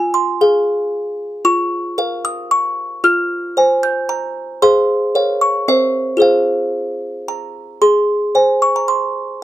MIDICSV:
0, 0, Header, 1, 2, 480
1, 0, Start_track
1, 0, Key_signature, -4, "minor"
1, 0, Tempo, 530504
1, 1319, Time_signature, 3, 2, 24, 8
1, 8533, End_track
2, 0, Start_track
2, 0, Title_t, "Music box"
2, 0, Program_c, 0, 10
2, 0, Note_on_c, 0, 65, 68
2, 0, Note_on_c, 0, 80, 99
2, 117, Note_off_c, 0, 80, 0
2, 126, Note_on_c, 0, 84, 89
2, 350, Note_off_c, 0, 65, 0
2, 372, Note_on_c, 0, 68, 51
2, 375, Note_on_c, 0, 77, 55
2, 585, Note_off_c, 0, 84, 0
2, 1286, Note_off_c, 0, 68, 0
2, 1287, Note_off_c, 0, 77, 0
2, 1309, Note_on_c, 0, 65, 67
2, 1312, Note_on_c, 0, 85, 113
2, 1779, Note_off_c, 0, 65, 0
2, 1792, Note_on_c, 0, 70, 54
2, 1798, Note_on_c, 0, 77, 58
2, 2004, Note_off_c, 0, 85, 0
2, 2033, Note_on_c, 0, 87, 111
2, 2264, Note_off_c, 0, 87, 0
2, 2273, Note_on_c, 0, 85, 104
2, 2713, Note_off_c, 0, 70, 0
2, 2717, Note_off_c, 0, 77, 0
2, 2732, Note_off_c, 0, 85, 0
2, 2749, Note_on_c, 0, 65, 70
2, 2751, Note_on_c, 0, 89, 114
2, 3214, Note_off_c, 0, 65, 0
2, 3231, Note_on_c, 0, 72, 52
2, 3237, Note_on_c, 0, 80, 59
2, 3440, Note_off_c, 0, 89, 0
2, 3467, Note_on_c, 0, 91, 110
2, 3698, Note_off_c, 0, 91, 0
2, 3702, Note_on_c, 0, 82, 105
2, 4153, Note_off_c, 0, 72, 0
2, 4156, Note_off_c, 0, 80, 0
2, 4166, Note_off_c, 0, 82, 0
2, 4182, Note_on_c, 0, 72, 43
2, 4183, Note_on_c, 0, 68, 67
2, 4184, Note_on_c, 0, 84, 82
2, 4190, Note_on_c, 0, 77, 50
2, 4629, Note_off_c, 0, 72, 0
2, 4633, Note_off_c, 0, 77, 0
2, 4651, Note_off_c, 0, 68, 0
2, 4661, Note_on_c, 0, 70, 61
2, 4663, Note_on_c, 0, 73, 46
2, 4668, Note_on_c, 0, 77, 46
2, 4878, Note_off_c, 0, 84, 0
2, 4898, Note_on_c, 0, 85, 96
2, 5111, Note_off_c, 0, 73, 0
2, 5114, Note_off_c, 0, 77, 0
2, 5132, Note_off_c, 0, 70, 0
2, 5135, Note_off_c, 0, 85, 0
2, 5141, Note_on_c, 0, 60, 55
2, 5142, Note_on_c, 0, 70, 42
2, 5144, Note_on_c, 0, 76, 83
2, 5151, Note_on_c, 0, 72, 39
2, 5582, Note_on_c, 0, 65, 44
2, 5592, Note_on_c, 0, 68, 36
2, 5593, Note_off_c, 0, 70, 0
2, 5597, Note_off_c, 0, 72, 0
2, 5609, Note_on_c, 0, 72, 38
2, 5610, Note_off_c, 0, 76, 0
2, 5614, Note_off_c, 0, 60, 0
2, 5625, Note_on_c, 0, 77, 76
2, 6559, Note_off_c, 0, 77, 0
2, 6590, Note_on_c, 0, 82, 78
2, 7021, Note_off_c, 0, 65, 0
2, 7026, Note_off_c, 0, 68, 0
2, 7035, Note_off_c, 0, 72, 0
2, 7059, Note_off_c, 0, 82, 0
2, 7072, Note_on_c, 0, 68, 58
2, 7072, Note_on_c, 0, 84, 83
2, 7544, Note_off_c, 0, 68, 0
2, 7554, Note_on_c, 0, 72, 43
2, 7558, Note_on_c, 0, 80, 50
2, 7770, Note_off_c, 0, 84, 0
2, 7800, Note_on_c, 0, 85, 90
2, 7922, Note_off_c, 0, 85, 0
2, 7925, Note_on_c, 0, 82, 74
2, 8036, Note_on_c, 0, 84, 82
2, 8045, Note_off_c, 0, 82, 0
2, 8483, Note_off_c, 0, 72, 0
2, 8485, Note_off_c, 0, 80, 0
2, 8501, Note_off_c, 0, 84, 0
2, 8533, End_track
0, 0, End_of_file